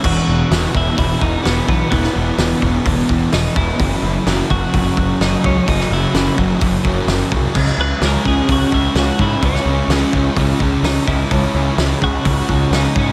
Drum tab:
CC |x---------------|----------------|----------------|----------------|
HH |----o---o---o---|o---o---o---o---|o---o---o---o---|o---o---o---o---|
SD |----o-------o---|-o--o-------o---|----o-------o---|-o--o-------o---|
BD |o-----o-o-o---o-|o-----o-o-o---o-|o-----o-o-o---o-|o-----o-o-o---o-|

CC |x---------------|----------------|----------------|
HH |----o---o---o---|o---o---o---o---|o---o---o---o---|
SD |-o--o-------o---|-o--o-------o---|----o-------o---|
BD |o-----o-o-o---o-|o-----o-o-o---o-|o-----o-o-o---o-|